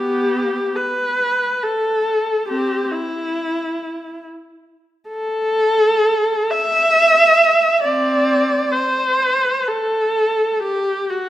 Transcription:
0.00 0.74 B3 medium
0.00 0.76 G4 medium
0.76 1.62 B4 medium
1.63 2.48 A4 medium
2.48 2.87 C4 medium
2.48 2.89 G4 medium
2.91 4.24 E4 medium
5.09 6.48 A4 medium
6.50 7.84 E5 medium
7.84 8.71 C4 medium
7.84 8.72 D5 medium
8.72 9.68 C5 medium
9.68 10.64 A4 medium
10.62 11.10 G4 medium
11.10 11.29 F#4 medium

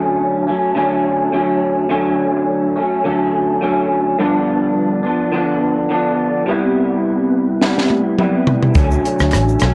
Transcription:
0.00 0.50 D3 medium
0.00 0.48 F#3 medium
0.00 0.47 A3 medium
0.00 0.46 C#4 loud
0.47 0.75 F#3 soft
0.47 0.76 A3 soft
0.47 0.76 C#4 soft
0.75 1.32 D3 medium
0.75 1.32 F#3 medium
0.75 1.33 A3 medium
0.75 1.33 C#4 medium
1.32 1.89 D3 medium
1.32 1.89 F#3 medium
1.32 1.90 A3 medium
1.32 1.90 C#4 medium
1.89 2.79 D3 medium
1.89 2.76 F#3 medium
1.89 2.76 A3 medium
1.89 2.75 C#4 medium
2.76 3.04 F#3 soft
2.76 3.05 A3 soft
2.76 3.05 C#4 medium
3.04 3.60 D3 medium
3.04 3.61 F#3 medium
3.04 3.62 A3 medium
3.04 3.62 C#4 medium
3.61 4.19 D3 medium
3.61 4.19 F#3 medium
3.61 4.19 A3 medium
3.61 4.20 C#4 medium
4.19 5.04 G2 medium
4.19 5.05 D3 medium
4.19 5.04 F3 medium
4.19 5.04 B3 medium
4.19 5.02 D4 loud
5.03 5.32 F3 soft
5.03 5.33 B3 medium
5.03 5.32 D4 medium
5.32 5.88 D3 medium
5.32 5.89 F3 medium
5.32 5.90 B3 medium
5.32 5.90 D4 medium
5.89 6.46 D3 medium
5.89 6.47 F3 medium
5.89 6.48 B3 medium
5.89 6.48 D4 medium
6.46 7.60 C3 medium
6.46 7.61 G3 medium
6.46 7.62 B3 medium
6.46 7.62 E4 loud
7.61 8.17 C3 medium
7.61 8.18 G3 medium
7.61 8.19 B3 medium
7.61 8.20 E4 medium
7.61 snare medium
7.78 snare medium
7.90 high tom medium
8.18 8.75 C3 medium
8.18 8.76 G3 medium
8.18 8.76 B3 medium
8.18 8.77 E4 medium
8.18 mid tom medium
8.47 floor tom loud
8.63 floor tom loud
8.75 8.98 D2 loud
8.75 9.64 D3 medium
8.75 9.62 F#3 medium
8.75 9.62 A3 loud
8.75 9.60 C#4 medium
8.75 kick loud
8.75 closed hi-hat medium
8.75 shaker medium
8.91 shaker medium
9.05 closed hi-hat medium
9.05 shaker medium
9.19 9.34 D2 medium
9.19 cross-stick medium
9.19 shaker medium
9.32 9.56 A1 medium
9.32 cross-stick loud
9.32 clap medium
9.32 closed hi-hat medium
9.32 shaker medium
9.49 shaker medium
9.60 9.74 B1 loud
9.60 9.74 A3 soft
9.60 9.74 C#4 medium
9.60 cross-stick medium
9.60 closed hi-hat medium
9.60 shaker medium
9.64 9.74 F#3 soft

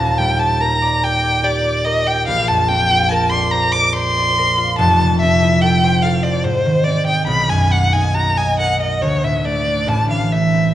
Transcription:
0.00 2.29 D#1 medium
0.00 2.30 D#2 medium
0.00 2.30 A#2 soft
0.00 0.81 D5 medium
0.00 0.20 A5 medium
0.18 2.30 G3 medium
0.18 0.41 G5 loud
0.38 1.01 G4 medium
0.38 0.63 A5 loud
0.60 1.84 A#4 medium
0.60 1.05 A#5 loud
0.82 1.22 D5 medium
1.03 1.42 G4 medium
1.03 1.46 G5 loud
1.23 1.63 D5 medium
1.43 2.05 G4 medium
1.43 1.86 D5 medium
1.64 3.30 D5 medium
1.85 3.10 A#4 medium
1.85 2.09 D#5 loud
2.06 2.30 G4 medium
2.06 2.27 G5 loud
2.27 4.83 A#1 medium
2.27 2.49 F5 loud
2.48 4.78 F2 medium
2.48 2.70 A5 loud
2.69 5.21 C4 medium
2.69 3.11 G5 loud
2.91 4.57 F4 medium
3.09 4.37 A#4 medium
3.09 3.31 A5 loud
3.30 3.73 D5 medium
3.30 3.53 C6 loud
3.51 3.94 C5 medium
3.51 3.74 A#5 loud
3.72 4.16 D5 medium
3.72 3.95 D6 loud
3.93 5.82 C5 medium
3.93 4.78 C6 loud
4.17 4.84 D5 medium
4.38 4.83 A#4 medium
4.58 6.48 F4 medium
4.78 6.47 F1 medium
4.78 6.48 F2 medium
4.78 5.20 A5 loud
5.01 6.48 C3 medium
5.20 6.85 C4 medium
5.20 5.63 E5 loud
5.43 6.48 E4 medium
5.62 6.03 A4 medium
5.62 6.04 G5 loud
5.84 6.23 C5 medium
6.02 6.48 A4 medium
6.02 6.24 F5 medium
6.23 7.31 C5 medium
6.23 6.45 D5 loud
6.44 7.31 G#2 medium
6.44 6.86 C5 loud
6.66 7.32 D#3 medium
6.84 7.32 C4 medium
6.84 7.06 D5 loud
7.07 7.93 D#4 medium
7.07 7.26 G5 loud
7.27 9.04 B1 medium
7.27 7.51 B5 loud
7.49 9.05 F#2 medium
7.49 7.73 G#5 loud
7.71 9.05 A#3 medium
7.71 7.95 F#5 loud
7.93 9.05 D#4 medium
7.93 8.16 G#5 loud
8.14 9.91 F#4 medium
8.14 8.39 A#5 loud
8.38 8.78 D#5 medium
8.38 8.59 G#5 loud
8.59 9.05 A#4 medium
8.59 8.80 F#5 medium
8.80 9.05 D#5 medium
8.80 9.03 D#5 medium
9.02 9.92 D2 medium
9.02 9.25 C#5 loud
9.23 9.86 A2 medium
9.23 9.47 E5 medium
9.44 10.31 A3 medium
9.44 9.90 D5 loud
9.67 9.92 D4 medium
9.87 10.74 A1 medium
9.87 10.74 A2 medium
9.87 10.10 A5 loud
10.10 10.74 E3 soft
10.10 10.34 F5 medium
10.32 10.74 A3 medium
10.32 10.74 E5 medium
10.54 10.74 C4 medium

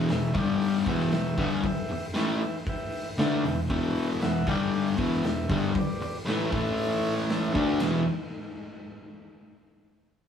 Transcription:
0.09 0.30 E2 medium
0.09 0.30 B2 medium
0.09 0.35 G4 medium
0.09 0.36 B4 medium
0.09 0.36 E5 medium
0.09 snare loud
0.09 open hi-hat medium
0.34 0.85 G2 medium
0.34 0.85 D3 loud
0.34 0.86 G3 loud
0.34 0.77 D5 medium
0.34 kick loud
0.34 open hi-hat medium
0.38 0.78 G4 medium
0.38 0.78 G5 loud
0.61 open hi-hat medium
0.86 1.11 E2 medium
0.86 1.12 B2 medium
0.86 1.12 E3 loud
0.86 1.50 B4 medium
0.86 1.50 E5 medium
0.86 1.50 G5 loud
0.86 kick loud
0.86 open hi-hat medium
1.00 snare soft
1.11 1.33 E2 medium
1.11 1.33 B2 medium
1.11 snare loud
1.11 open hi-hat medium
1.37 1.62 G2 medium
1.37 1.63 D3 loud
1.37 1.63 G3 loud
1.37 kick loud
1.37 open hi-hat medium
1.63 2.05 B4 medium
1.63 2.06 E5 medium
1.63 2.06 G5 loud
1.63 muted distorted electric guitar stroke medium
1.63 kick loud
1.63 open hi-hat medium
1.89 muted distorted electric guitar stroke medium
1.89 open hi-hat medium
2.14 2.39 A2 medium
2.14 2.40 E3 loud
2.14 2.40 A3 loud
2.14 2.56 B4 medium
2.14 2.57 E5 medium
2.14 2.57 G5 medium
2.14 snare loud
2.14 open hi-hat loud
2.41 open hi-hat medium
2.66 3.09 B4 medium
2.66 3.09 E5 medium
2.66 3.09 G5 loud
2.66 kick loud
2.66 open hi-hat medium
2.92 open hi-hat medium
3.18 3.43 D3 loud
3.18 3.43 A3 loud
3.18 3.43 D4 loud
3.18 3.60 B4 medium
3.18 3.60 E5 medium
3.18 3.60 G5 medium
3.18 snare loud
3.18 open hi-hat medium
3.44 3.64 E2 medium
3.44 3.65 B2 medium
3.44 open hi-hat medium
3.69 4.20 E2 loud
3.69 4.20 B2 loud
3.69 4.21 E3 loud
3.69 4.11 B4 medium
3.69 4.10 E5 medium
3.69 4.11 G5 medium
3.69 kick loud
3.69 open hi-hat medium
3.96 open hi-hat medium
4.21 4.41 E2 medium
4.21 4.41 B2 medium
4.21 4.47 B4 medium
4.21 4.47 E5 medium
4.21 4.47 F#5 loud
4.21 snare loud
4.21 open hi-hat medium
4.47 4.97 G2 medium
4.47 4.97 D3 medium
4.47 4.98 G3 loud
4.47 4.88 G4 medium
4.47 4.89 D5 medium
4.47 4.89 G5 loud
4.47 kick loud
4.47 open hi-hat medium
4.73 open hi-hat medium
4.97 5.21 E2 loud
4.97 5.22 B2 loud
4.97 5.23 E3 loud
4.97 5.60 G4 medium
4.97 5.60 B4 medium
4.97 5.60 E5 loud
4.97 kick loud
4.97 open hi-hat medium
5.12 snare soft
5.22 5.43 E2 medium
5.22 5.44 B2 medium
5.22 snare loud
5.22 open hi-hat medium
5.49 5.74 G2 loud
5.49 5.74 D3 loud
5.49 5.75 G3 loud
5.49 kick loud
5.49 open hi-hat medium
5.75 6.17 G4 medium
5.75 6.17 B4 medium
5.75 6.18 D5 loud
5.75 muted distorted electric guitar stroke medium
5.75 kick loud
5.75 open hi-hat medium
6.01 muted distorted electric guitar stroke medium
6.01 open hi-hat medium
6.25 6.49 A2 medium
6.25 6.51 E3 loud
6.25 6.52 A3 loud
6.25 6.53 G4 medium
6.25 6.53 B4 medium
6.25 6.53 E5 medium
6.25 snare loud
6.25 open hi-hat loud
6.51 7.53 A2 medium
6.51 7.54 E3 loud
6.51 7.54 A3 loud
6.51 7.14 E4 loud
6.51 7.14 A4 medium
6.51 7.15 E5 loud
6.51 kick loud
6.51 open hi-hat medium
6.78 open hi-hat medium
7.03 open hi-hat medium
7.18 snare soft
7.29 7.56 E4 medium
7.29 7.56 A4 medium
7.29 7.56 E5 medium
7.29 snare loud
7.29 open hi-hat medium
7.53 7.79 D3 medium
7.53 7.79 A3 medium
7.53 7.80 D4 loud
7.53 kick loud
7.53 open hi-hat medium
7.59 7.78 G4 loud
7.59 7.78 B4 medium
7.59 7.78 E5 loud
7.80 8.01 E2 loud
7.80 8.02 B2 medium
7.80 8.02 E3 loud
7.80 snare loud
7.80 ride bell medium
7.84 8.06 G4 medium
7.84 8.06 B4 medium
7.84 8.06 E5 loud

